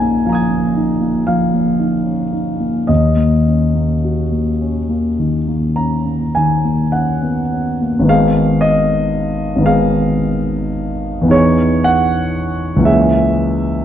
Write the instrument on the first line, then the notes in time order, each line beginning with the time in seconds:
grand piano
Already playing: A#1 A#3 D#4 G#4 G#5 A#5
0.02 A#3
0.26 F3 F5 A#5
0.32 D#6 G#6
0.51 A#3
0.76 D#4
1.01 A#3
1.27 F3 F5
1.54 A#3
1.79 D#4
2.05 C#4
2.32 D#4
2.60 A#3
2.87 D#2 D#5
3.17 A#3
3.47 C#4
3.75 A#3
4.04 F#4
4.32 A#3
4.61 C#4
4.89 A#3
5.19 D#3
5.48 A#3
5.76 C#4 A#5
6.06 A#3
6.35 D#3 G#5
6.65 A#3
6.92 C#4 F#5
7.22 B3
7.53 C#4
7.82 A#3
7.99 G#1 D#3
8.04 B3 D#4
8.09 G#4 F5
8.61 D#5
9.56 G#1 D#3
9.60 B3 D#4
9.66 G#4 F5
11.21 E2 E3 B3
11.28 D#4 G#4 C#5
11.84 F#5
12.76 C#2 E3
12.80 A#3 C#4
12.85 G#4 E5